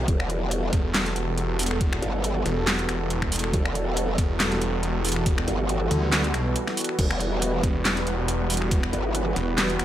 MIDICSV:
0, 0, Header, 1, 5, 480
1, 0, Start_track
1, 0, Key_signature, 1, "minor"
1, 0, Tempo, 431655
1, 90, Time_signature, 4, 2, 24, 8
1, 10952, End_track
2, 0, Start_track
2, 0, Title_t, "Supersaw synth"
2, 0, Program_c, 0, 81
2, 0, Note_on_c, 0, 52, 83
2, 0, Note_on_c, 0, 55, 74
2, 0, Note_on_c, 0, 59, 76
2, 0, Note_on_c, 0, 66, 76
2, 91, Note_on_c, 0, 69, 92
2, 7752, Note_off_c, 0, 69, 0
2, 7769, Note_on_c, 0, 71, 95
2, 10952, Note_off_c, 0, 52, 0
2, 10952, Note_off_c, 0, 55, 0
2, 10952, Note_off_c, 0, 59, 0
2, 10952, Note_off_c, 0, 66, 0
2, 10952, Note_off_c, 0, 71, 0
2, 10952, End_track
3, 0, Start_track
3, 0, Title_t, "Wobble bass"
3, 0, Program_c, 1, 39
3, 89, Note_on_c, 1, 28, 98
3, 792, Note_off_c, 1, 28, 0
3, 2250, Note_on_c, 1, 31, 92
3, 2713, Note_off_c, 1, 31, 0
3, 3930, Note_on_c, 1, 28, 94
3, 4633, Note_off_c, 1, 28, 0
3, 6092, Note_on_c, 1, 31, 97
3, 6554, Note_off_c, 1, 31, 0
3, 7769, Note_on_c, 1, 28, 97
3, 8472, Note_off_c, 1, 28, 0
3, 9930, Note_on_c, 1, 31, 101
3, 10393, Note_off_c, 1, 31, 0
3, 10952, End_track
4, 0, Start_track
4, 0, Title_t, "Detuned saw bass"
4, 0, Program_c, 2, 39
4, 810, Note_on_c, 2, 28, 99
4, 1273, Note_off_c, 2, 28, 0
4, 1290, Note_on_c, 2, 28, 98
4, 2233, Note_off_c, 2, 28, 0
4, 2731, Note_on_c, 2, 28, 94
4, 3193, Note_off_c, 2, 28, 0
4, 3210, Note_on_c, 2, 28, 103
4, 3913, Note_off_c, 2, 28, 0
4, 4650, Note_on_c, 2, 28, 97
4, 5113, Note_off_c, 2, 28, 0
4, 5131, Note_on_c, 2, 28, 98
4, 6073, Note_off_c, 2, 28, 0
4, 6570, Note_on_c, 2, 38, 103
4, 7033, Note_off_c, 2, 38, 0
4, 7051, Note_on_c, 2, 35, 99
4, 7291, Note_off_c, 2, 35, 0
4, 8489, Note_on_c, 2, 28, 99
4, 8952, Note_off_c, 2, 28, 0
4, 8969, Note_on_c, 2, 28, 97
4, 9912, Note_off_c, 2, 28, 0
4, 10410, Note_on_c, 2, 28, 100
4, 10873, Note_off_c, 2, 28, 0
4, 10891, Note_on_c, 2, 28, 101
4, 10952, Note_off_c, 2, 28, 0
4, 10952, End_track
5, 0, Start_track
5, 0, Title_t, "Drums"
5, 89, Note_on_c, 9, 36, 124
5, 90, Note_on_c, 9, 42, 80
5, 200, Note_off_c, 9, 36, 0
5, 201, Note_off_c, 9, 42, 0
5, 222, Note_on_c, 9, 26, 87
5, 330, Note_on_c, 9, 42, 52
5, 333, Note_off_c, 9, 26, 0
5, 442, Note_off_c, 9, 42, 0
5, 570, Note_on_c, 9, 42, 81
5, 681, Note_off_c, 9, 42, 0
5, 809, Note_on_c, 9, 36, 105
5, 811, Note_on_c, 9, 42, 53
5, 921, Note_off_c, 9, 36, 0
5, 922, Note_off_c, 9, 42, 0
5, 1050, Note_on_c, 9, 38, 120
5, 1050, Note_on_c, 9, 39, 87
5, 1050, Note_on_c, 9, 42, 81
5, 1162, Note_off_c, 9, 38, 0
5, 1162, Note_off_c, 9, 39, 0
5, 1162, Note_off_c, 9, 42, 0
5, 1181, Note_on_c, 9, 38, 38
5, 1181, Note_on_c, 9, 42, 37
5, 1290, Note_off_c, 9, 42, 0
5, 1290, Note_on_c, 9, 42, 53
5, 1293, Note_off_c, 9, 38, 0
5, 1401, Note_off_c, 9, 42, 0
5, 1530, Note_on_c, 9, 42, 75
5, 1642, Note_off_c, 9, 42, 0
5, 1771, Note_on_c, 9, 46, 98
5, 1814, Note_on_c, 9, 42, 62
5, 1850, Note_off_c, 9, 42, 0
5, 1850, Note_on_c, 9, 42, 79
5, 1882, Note_off_c, 9, 46, 0
5, 1902, Note_on_c, 9, 26, 57
5, 1961, Note_off_c, 9, 42, 0
5, 2010, Note_on_c, 9, 36, 116
5, 2010, Note_on_c, 9, 42, 81
5, 2013, Note_off_c, 9, 26, 0
5, 2121, Note_off_c, 9, 36, 0
5, 2121, Note_off_c, 9, 42, 0
5, 2142, Note_on_c, 9, 26, 86
5, 2251, Note_on_c, 9, 42, 55
5, 2253, Note_off_c, 9, 26, 0
5, 2362, Note_off_c, 9, 42, 0
5, 2491, Note_on_c, 9, 42, 80
5, 2603, Note_off_c, 9, 42, 0
5, 2732, Note_on_c, 9, 42, 54
5, 2843, Note_off_c, 9, 42, 0
5, 2971, Note_on_c, 9, 38, 120
5, 2971, Note_on_c, 9, 39, 90
5, 2971, Note_on_c, 9, 42, 78
5, 3082, Note_off_c, 9, 38, 0
5, 3082, Note_off_c, 9, 39, 0
5, 3082, Note_off_c, 9, 42, 0
5, 3102, Note_on_c, 9, 42, 38
5, 3211, Note_off_c, 9, 42, 0
5, 3211, Note_on_c, 9, 26, 86
5, 3211, Note_on_c, 9, 42, 55
5, 3322, Note_off_c, 9, 26, 0
5, 3322, Note_off_c, 9, 42, 0
5, 3451, Note_on_c, 9, 42, 82
5, 3563, Note_off_c, 9, 42, 0
5, 3581, Note_on_c, 9, 36, 62
5, 3582, Note_on_c, 9, 26, 67
5, 3691, Note_on_c, 9, 46, 97
5, 3692, Note_off_c, 9, 36, 0
5, 3694, Note_off_c, 9, 26, 0
5, 3735, Note_on_c, 9, 42, 62
5, 3771, Note_off_c, 9, 42, 0
5, 3771, Note_on_c, 9, 42, 81
5, 3802, Note_off_c, 9, 46, 0
5, 3824, Note_on_c, 9, 26, 57
5, 3882, Note_off_c, 9, 42, 0
5, 3930, Note_on_c, 9, 36, 113
5, 3932, Note_on_c, 9, 42, 79
5, 3935, Note_off_c, 9, 26, 0
5, 4041, Note_off_c, 9, 36, 0
5, 4043, Note_off_c, 9, 42, 0
5, 4064, Note_on_c, 9, 26, 82
5, 4174, Note_on_c, 9, 42, 57
5, 4175, Note_off_c, 9, 26, 0
5, 4285, Note_off_c, 9, 42, 0
5, 4413, Note_on_c, 9, 42, 86
5, 4524, Note_off_c, 9, 42, 0
5, 4650, Note_on_c, 9, 36, 95
5, 4653, Note_on_c, 9, 42, 58
5, 4761, Note_off_c, 9, 36, 0
5, 4764, Note_off_c, 9, 42, 0
5, 4892, Note_on_c, 9, 38, 117
5, 4892, Note_on_c, 9, 39, 91
5, 4892, Note_on_c, 9, 42, 84
5, 5004, Note_off_c, 9, 38, 0
5, 5004, Note_off_c, 9, 39, 0
5, 5004, Note_off_c, 9, 42, 0
5, 5024, Note_on_c, 9, 38, 37
5, 5024, Note_on_c, 9, 42, 41
5, 5132, Note_off_c, 9, 42, 0
5, 5132, Note_on_c, 9, 42, 59
5, 5135, Note_off_c, 9, 38, 0
5, 5243, Note_off_c, 9, 42, 0
5, 5372, Note_on_c, 9, 42, 79
5, 5483, Note_off_c, 9, 42, 0
5, 5611, Note_on_c, 9, 46, 98
5, 5655, Note_on_c, 9, 42, 70
5, 5691, Note_off_c, 9, 42, 0
5, 5691, Note_on_c, 9, 42, 86
5, 5723, Note_off_c, 9, 46, 0
5, 5742, Note_on_c, 9, 26, 54
5, 5802, Note_off_c, 9, 42, 0
5, 5850, Note_on_c, 9, 36, 119
5, 5850, Note_on_c, 9, 42, 81
5, 5853, Note_off_c, 9, 26, 0
5, 5961, Note_off_c, 9, 36, 0
5, 5962, Note_off_c, 9, 42, 0
5, 5982, Note_on_c, 9, 26, 81
5, 6090, Note_on_c, 9, 42, 55
5, 6093, Note_off_c, 9, 26, 0
5, 6202, Note_off_c, 9, 42, 0
5, 6330, Note_on_c, 9, 42, 84
5, 6441, Note_off_c, 9, 42, 0
5, 6571, Note_on_c, 9, 42, 59
5, 6682, Note_off_c, 9, 42, 0
5, 6810, Note_on_c, 9, 38, 114
5, 6810, Note_on_c, 9, 39, 95
5, 6810, Note_on_c, 9, 42, 86
5, 6921, Note_off_c, 9, 38, 0
5, 6921, Note_off_c, 9, 39, 0
5, 6921, Note_off_c, 9, 42, 0
5, 6942, Note_on_c, 9, 42, 42
5, 7051, Note_off_c, 9, 42, 0
5, 7051, Note_on_c, 9, 26, 83
5, 7051, Note_on_c, 9, 42, 59
5, 7162, Note_off_c, 9, 26, 0
5, 7162, Note_off_c, 9, 42, 0
5, 7291, Note_on_c, 9, 42, 83
5, 7402, Note_off_c, 9, 42, 0
5, 7423, Note_on_c, 9, 26, 65
5, 7423, Note_on_c, 9, 38, 38
5, 7531, Note_on_c, 9, 46, 100
5, 7534, Note_off_c, 9, 26, 0
5, 7534, Note_off_c, 9, 38, 0
5, 7574, Note_on_c, 9, 42, 71
5, 7611, Note_off_c, 9, 42, 0
5, 7611, Note_on_c, 9, 42, 83
5, 7642, Note_off_c, 9, 46, 0
5, 7662, Note_on_c, 9, 26, 52
5, 7722, Note_off_c, 9, 42, 0
5, 7769, Note_on_c, 9, 36, 122
5, 7771, Note_on_c, 9, 42, 85
5, 7771, Note_on_c, 9, 49, 79
5, 7773, Note_off_c, 9, 26, 0
5, 7880, Note_off_c, 9, 36, 0
5, 7882, Note_off_c, 9, 42, 0
5, 7882, Note_off_c, 9, 49, 0
5, 7902, Note_on_c, 9, 26, 82
5, 8011, Note_on_c, 9, 42, 58
5, 8013, Note_off_c, 9, 26, 0
5, 8123, Note_off_c, 9, 42, 0
5, 8251, Note_on_c, 9, 42, 87
5, 8362, Note_off_c, 9, 42, 0
5, 8489, Note_on_c, 9, 36, 103
5, 8491, Note_on_c, 9, 42, 60
5, 8600, Note_off_c, 9, 36, 0
5, 8602, Note_off_c, 9, 42, 0
5, 8732, Note_on_c, 9, 38, 120
5, 8732, Note_on_c, 9, 39, 98
5, 8732, Note_on_c, 9, 42, 86
5, 8843, Note_off_c, 9, 38, 0
5, 8843, Note_off_c, 9, 39, 0
5, 8843, Note_off_c, 9, 42, 0
5, 8863, Note_on_c, 9, 38, 38
5, 8863, Note_on_c, 9, 42, 43
5, 8972, Note_off_c, 9, 42, 0
5, 8972, Note_on_c, 9, 42, 59
5, 8974, Note_off_c, 9, 38, 0
5, 9083, Note_off_c, 9, 42, 0
5, 9211, Note_on_c, 9, 42, 84
5, 9322, Note_off_c, 9, 42, 0
5, 9451, Note_on_c, 9, 46, 93
5, 9495, Note_on_c, 9, 42, 66
5, 9563, Note_off_c, 9, 46, 0
5, 9582, Note_on_c, 9, 26, 50
5, 9607, Note_off_c, 9, 42, 0
5, 9690, Note_on_c, 9, 36, 122
5, 9691, Note_on_c, 9, 42, 83
5, 9694, Note_off_c, 9, 26, 0
5, 9801, Note_off_c, 9, 36, 0
5, 9802, Note_off_c, 9, 42, 0
5, 9823, Note_on_c, 9, 26, 82
5, 9932, Note_on_c, 9, 42, 57
5, 9934, Note_off_c, 9, 26, 0
5, 10043, Note_off_c, 9, 42, 0
5, 10171, Note_on_c, 9, 42, 84
5, 10282, Note_off_c, 9, 42, 0
5, 10411, Note_on_c, 9, 42, 56
5, 10522, Note_off_c, 9, 42, 0
5, 10651, Note_on_c, 9, 38, 127
5, 10651, Note_on_c, 9, 39, 93
5, 10651, Note_on_c, 9, 42, 82
5, 10762, Note_off_c, 9, 38, 0
5, 10762, Note_off_c, 9, 39, 0
5, 10762, Note_off_c, 9, 42, 0
5, 10782, Note_on_c, 9, 42, 40
5, 10891, Note_off_c, 9, 42, 0
5, 10891, Note_on_c, 9, 26, 84
5, 10891, Note_on_c, 9, 42, 56
5, 10952, Note_off_c, 9, 26, 0
5, 10952, Note_off_c, 9, 42, 0
5, 10952, End_track
0, 0, End_of_file